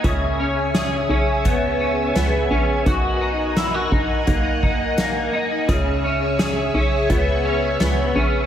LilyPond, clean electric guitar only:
\new Staff \with { instrumentName = "Clean electric guitar" } { \time 4/4 \key cis \dorian \tempo 4 = 85 <cis gis'>8 cis'8 gis'8 cis'8 b8 cis'8 b8 cis'8 | fis'8 dis'8 e'16 fis'16 dis'8 ais8 dis'8 ais8 dis'8 | <cis gis'>8 cis'8 gis'8 cis'8 b8 cis'8 b8 cis'8 | }